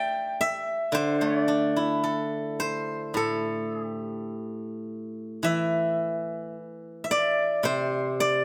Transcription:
0.00 0.20 C5 medium
0.00 0.60 D5 medium
0.00 0.40 E5 medium
0.00 1.41 G5 medium
0.00 1.22 A5 medium
0.00 0.50 C6 soft
0.00 0.39 D6 soft
0.41 2.13 E5 medium
0.92 4.30 D3 soft
0.92 1.25 C5 medium
1.21 3.44 A3 soft
1.21 1.43 C#5 medium
1.43 2.79 D5 medium
1.48 3.72 D4 soft
1.76 4.01 E4 soft
2.04 3.16 A4 soft
2.60 4.58 C5 medium
3.14 6.54 A2 soft
3.14 3.74 A4 soft
3.74 3.87 G#4 soft
3.87 5.36 G4 soft
5.43 8.45 E3 soft
5.43 7.04 E5 medium
7.04 8.45 E5 medium
7.11 8.20 D5 medium
7.63 8.45 C3 soft
7.63 8.45 C5 medium
8.20 8.45 D5 medium

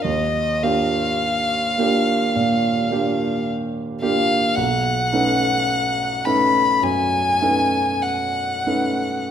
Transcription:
0.04 0.61 D#2 soft
0.04 0.64 D#5 medium
0.63 1.73 A#3 soft
0.63 1.74 D4 soft
0.63 1.74 F4 soft
0.63 1.74 G4 soft
0.63 3.47 F5 medium
1.78 2.31 A#3 soft
1.78 2.31 D4 soft
1.78 2.32 F4 soft
1.78 2.32 G4 soft
2.36 2.90 A#2 soft
2.91 3.99 A#3 soft
2.91 3.99 D4 soft
2.91 3.99 F4 soft
2.91 3.99 G4 soft
4.02 4.54 A#3 soft
4.02 4.54 D4 soft
4.02 4.54 F4 soft
4.02 4.54 G4 soft
4.02 4.57 F5 medium
4.56 5.11 B1 soft
4.56 6.27 F#5 medium
5.13 6.22 A3 soft
5.13 6.22 C#4 soft
5.13 6.22 D#4 soft
5.13 6.22 B4 soft
6.25 6.80 A3 soft
6.25 6.80 C#4 soft
6.25 6.80 D#4 soft
6.25 6.80 B4 soft
6.25 6.85 B5 medium
6.82 7.40 F#2 soft
6.82 8.04 G#5 medium
7.41 8.62 A3 soft
7.41 8.62 C#4 soft
7.41 8.62 D#4 soft
7.41 8.62 B4 soft
8.02 9.31 F#5 medium
8.66 9.31 A3 soft
8.66 9.31 C#4 soft
8.66 9.31 D#4 soft
8.66 9.31 B4 soft

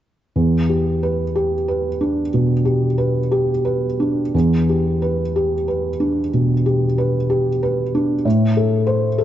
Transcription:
0.36 2.28 E2 soft
0.69 1.22 G4 soft
1.03 1.54 B4 soft
1.35 1.87 G4 soft
1.68 2.20 B4 soft
2.01 2.52 D4 soft
2.34 2.85 B2 soft
2.65 3.17 G4 soft
2.98 3.51 B4 soft
3.31 3.86 G4 soft
3.65 4.21 B4 soft
4.00 4.34 D4 soft
4.35 6.28 E2 soft
4.69 5.22 G4 soft
5.02 5.54 B4 soft
5.36 5.87 G4 soft
5.68 6.19 B4 soft
6.00 6.51 D4 soft
6.34 6.84 B2 soft
6.66 7.16 G4 soft
6.98 7.49 B4 soft
7.30 7.81 G4 soft
7.63 8.13 B4 soft
7.95 8.26 D4 soft
8.25 9.24 A2 soft
8.57 9.08 A4 soft
8.87 9.24 C5 soft
9.18 9.24 A4 soft

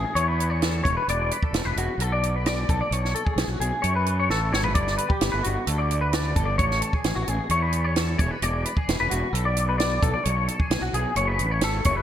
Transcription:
0.00 0.16 G#4 medium
0.15 0.81 E2 medium
0.15 0.28 C#5 medium
0.15 closed hi-hat medium
0.28 0.50 B4 medium
0.40 closed hi-hat medium
0.50 0.62 C#5 medium
0.62 0.83 A4 medium
0.62 snare medium
0.62 closed hi-hat medium
0.84 0.96 E1 medium
0.84 0.96 C#5 medium
0.84 kick loud
0.84 closed hi-hat medium
0.97 1.08 B4 medium
1.08 1.30 E1 medium
1.08 1.32 D5 medium
1.08 closed hi-hat medium
1.31 1.43 B4 medium
1.31 closed hi-hat medium
1.43 1.65 A4 medium
1.43 kick medium
1.53 1.64 E1 medium
1.53 snare loud
1.53 closed hi-hat medium
1.65 1.75 E1 medium
1.65 1.77 B4 medium
1.76 1.88 E1 medium
1.76 2.01 F#4 medium
1.76 closed hi-hat medium
1.98 2.64 B1 medium
1.98 2.12 A4 medium
1.98 closed hi-hat medium
2.12 2.36 D5 medium
2.23 closed hi-hat medium
2.36 2.46 B4 medium
2.46 2.69 D5 medium
2.46 snare medium
2.46 closed hi-hat medium
2.69 2.80 B1 medium
2.69 2.81 A4 medium
2.69 kick loud
2.69 closed hi-hat medium
2.81 2.93 D5 medium
2.91 3.13 B1 loud
2.91 3.15 C#5 medium
2.91 closed hi-hat medium
3.05 snare soft
3.15 3.25 A4 medium
3.15 closed hi-hat medium
3.25 3.49 G#4 medium
3.25 kick medium
3.36 3.47 B1 medium
3.36 snare loud
3.36 closed hi-hat medium
3.48 3.59 B1 medium
3.48 3.60 F#4 medium
3.60 3.71 B1 medium
3.60 3.84 G#4 medium
3.60 closed hi-hat medium
3.82 4.27 F#2 medium
3.82 3.94 C#5 medium
3.82 closed hi-hat medium
3.96 4.18 B4 medium
4.06 closed hi-hat medium
4.20 4.30 C#5 medium
4.29 4.50 A1 medium
4.29 4.53 A4 medium
4.29 snare soft
4.52 4.75 G#1 medium
4.52 4.64 C#5 medium
4.52 snare medium
4.64 4.74 B4 medium
4.64 floor tom medium
4.75 4.97 G1 medium
4.75 4.97 D5 medium
4.75 kick medium
4.75 closed hi-hat medium
4.87 snare soft
4.98 5.10 B4 medium
4.98 closed hi-hat medium
5.09 5.32 G4 medium
5.09 kick medium
5.21 5.32 G1 medium
5.21 snare loud
5.21 closed hi-hat medium
5.32 5.44 G1 medium
5.32 5.44 B4 medium
5.43 5.56 G1 medium
5.43 5.67 F#4 medium
5.43 closed hi-hat medium
5.67 6.32 D2 medium
5.67 5.79 A4 medium
5.67 closed hi-hat medium
5.78 6.01 D5 medium
5.91 closed hi-hat medium
6.01 6.13 B4 medium
6.13 6.36 D5 medium
6.13 snare medium
6.13 closed hi-hat medium
6.36 6.60 G1 medium
6.36 6.47 A4 medium
6.36 kick medium
6.36 closed hi-hat medium
6.45 6.58 D5 medium
6.58 6.81 A1 medium
6.58 6.82 C#5 medium
6.58 kick loud
6.58 closed hi-hat medium
6.71 snare soft
6.82 6.93 A4 medium
6.82 closed hi-hat medium
6.93 7.16 G#4 medium
6.93 kick medium
7.04 7.15 A1 medium
7.04 snare loud
7.04 closed hi-hat medium
7.15 7.27 A1 medium
7.15 7.28 F#4 medium
7.28 7.39 A1 medium
7.28 7.51 G#4 medium
7.28 closed hi-hat medium
7.49 8.15 E2 medium
7.49 7.62 C#5 medium
7.49 closed hi-hat medium
7.62 7.84 B4 medium
7.73 closed hi-hat medium
7.84 7.96 C#5 medium
7.96 8.18 A4 medium
7.96 snare medium
7.96 closed hi-hat medium
8.18 8.30 E1 medium
8.18 8.30 C#5 medium
8.18 kick loud
8.18 closed hi-hat medium
8.30 8.43 B4 medium
8.42 8.64 E1 medium
8.42 8.65 D5 medium
8.42 closed hi-hat medium
8.65 8.77 B4 medium
8.65 closed hi-hat medium
8.77 9.00 G#4 medium
8.77 kick medium
8.88 8.99 E1 medium
8.88 snare medium
8.88 closed hi-hat medium
9.00 9.11 E1 medium
9.00 9.11 B4 medium
9.10 9.22 E1 medium
9.10 9.33 F#4 medium
9.10 closed hi-hat medium
9.33 9.98 B1 medium
9.33 9.45 A4 medium
9.33 closed hi-hat medium
9.45 9.68 D5 medium
9.57 closed hi-hat medium
9.69 9.78 B4 medium
9.78 10.02 D5 medium
9.78 snare medium
9.78 closed hi-hat medium
10.02 10.13 B1 medium
10.02 10.14 A4 medium
10.02 kick medium
10.02 closed hi-hat medium
10.14 10.24 D5 medium
10.24 10.47 B1 loud
10.24 10.48 C#5 medium
10.24 closed hi-hat medium
10.48 10.59 A4 medium
10.48 closed hi-hat medium
10.59 10.82 G#4 medium
10.59 kick medium
10.70 10.80 B1 medium
10.70 snare loud
10.70 closed hi-hat medium
10.81 10.92 B1 medium
10.81 10.94 F#4 medium
10.93 11.04 B1 medium
10.93 11.16 G#4 medium
10.93 closed hi-hat medium
11.15 11.38 F#1 loud
11.15 11.28 C#5 medium
11.15 closed hi-hat medium
11.28 11.51 B4 medium
11.39 11.60 A1 medium
11.39 closed hi-hat soft
11.51 11.63 C#5 medium
11.61 11.83 G#1 medium
11.61 11.85 A4 medium
11.61 snare loud
11.61 closed hi-hat medium
11.85 12.02 F#1 medium
11.85 11.96 C#5 medium
11.85 kick medium
11.85 closed hi-hat medium
11.97 12.02 B4 medium

